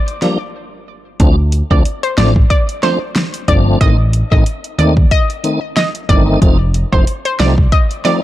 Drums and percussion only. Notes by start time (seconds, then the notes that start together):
0.08 closed hi-hat
0.22 snare, closed hi-hat
1.20 kick, closed hi-hat
1.52 closed hi-hat
1.71 kick
1.85 closed hi-hat
2.03 closed hi-hat
2.18 snare, closed hi-hat
2.36 kick
2.50 kick, closed hi-hat
2.69 closed hi-hat
2.83 snare, closed hi-hat
3.16 snare, closed hi-hat
3.34 closed hi-hat
3.48 kick, closed hi-hat
3.81 kick, closed hi-hat
4.13 closed hi-hat
4.32 kick
4.46 closed hi-hat
4.64 closed hi-hat
4.79 closed hi-hat
4.97 kick
5.11 kick, closed hi-hat
5.30 closed hi-hat
5.44 closed hi-hat
5.77 snare, closed hi-hat
5.95 closed hi-hat
6.09 kick, closed hi-hat
6.42 kick, closed hi-hat
6.74 closed hi-hat
6.93 kick
7.07 closed hi-hat
7.25 closed hi-hat
7.40 snare, closed hi-hat
7.58 kick
7.72 kick, closed hi-hat
7.91 closed hi-hat
8.05 snare, closed hi-hat